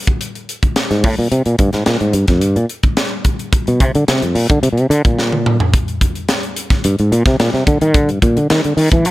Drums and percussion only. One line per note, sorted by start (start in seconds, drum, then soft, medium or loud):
0.07 kick medium
0.21 closed hi-hat medium
0.35 closed hi-hat soft
0.49 closed hi-hat medium
0.63 kick medium
0.63 closed hi-hat soft
0.76 snare loud
0.76 closed hi-hat medium
0.91 snare soft
0.91 closed hi-hat soft
1.04 kick loud
1.04 open hi-hat medium
1.32 closed hi-hat medium
1.46 closed hi-hat soft
1.59 kick medium
1.59 closed hi-hat medium
1.73 snare soft
1.73 closed hi-hat soft
1.86 snare loud
1.86 closed hi-hat medium
2.00 closed hi-hat soft
2.13 closed hi-hat medium
2.28 kick medium
2.28 snare soft
2.28 closed hi-hat soft
2.41 closed hi-hat medium
2.56 closed hi-hat soft
2.69 closed hi-hat soft
2.83 kick medium
2.83 closed hi-hat soft
2.97 snare loud
2.97 closed hi-hat medium
3.25 kick medium
3.25 closed hi-hat medium
3.39 closed hi-hat soft
3.53 kick loud
3.53 closed hi-hat medium
3.67 closed hi-hat soft
3.80 kick medium
3.80 closed hi-hat medium
3.95 closed hi-hat soft
4.08 snare loud
4.08 closed hi-hat medium
4.22 closed hi-hat soft
4.35 open hi-hat medium
4.50 kick medium
4.50 closed hi-hat soft
4.63 closed hi-hat medium
4.77 closed hi-hat soft
4.91 closed hi-hat medium
5.05 kick medium
5.05 closed hi-hat soft
5.19 snare medium
5.32 mid tom medium
5.46 mid tom medium
5.60 floor tom medium
5.74 kick loud
5.74 closed hi-hat medium
5.88 closed hi-hat soft
6.01 kick medium
6.01 closed hi-hat medium
6.15 closed hi-hat soft
6.29 snare medium
6.29 closed hi-hat medium
6.43 closed hi-hat soft
6.56 closed hi-hat medium
6.70 kick medium
6.70 snare soft
6.70 closed hi-hat soft
6.84 closed hi-hat medium
6.99 closed hi-hat soft
7.12 closed hi-hat soft
7.26 kick medium
7.26 snare soft
7.26 closed hi-hat soft
7.40 snare loud
7.40 closed hi-hat medium
7.54 snare soft
7.67 kick medium
7.67 closed hi-hat medium
7.81 closed hi-hat soft
7.94 kick loud
7.94 closed hi-hat medium
8.09 closed hi-hat soft
8.22 kick medium
8.22 closed hi-hat medium
8.37 closed hi-hat soft
8.50 snare loud
8.50 closed hi-hat medium
8.64 closed hi-hat soft
8.78 open hi-hat medium
8.92 kick medium
8.92 closed hi-hat soft
9.05 closed hi-hat medium